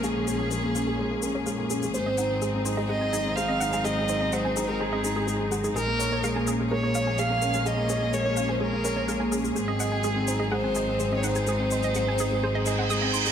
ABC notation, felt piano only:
X:1
M:4/4
L:1/16
Q:1/4=126
K:Abmix
V:1 name="Felt piano"
A, B, D B, A, B, D A, A, B, D B, A, B, D A, | A, C E C A, C E A, A, C E C A, C E A, | A, C E C A, C E A, A, C E A, A, E A, E | A, B, d B, A, B, D A, A, B, d B, A, B, D A, |
A, B, d B, A, B, D A, A, B, d B, A, B, D A, | A, C e C A, C E A, A, C e C A, C E A, | A, C e C A, C E A, A, C e C A, C E A, |]